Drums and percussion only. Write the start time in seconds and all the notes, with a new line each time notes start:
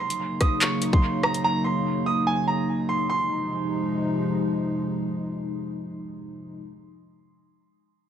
0.10 closed hi-hat
0.41 kick, cross-stick, closed hi-hat
0.61 clap, closed hi-hat
0.82 closed hi-hat
0.93 kick
1.23 cross-stick
1.34 closed hi-hat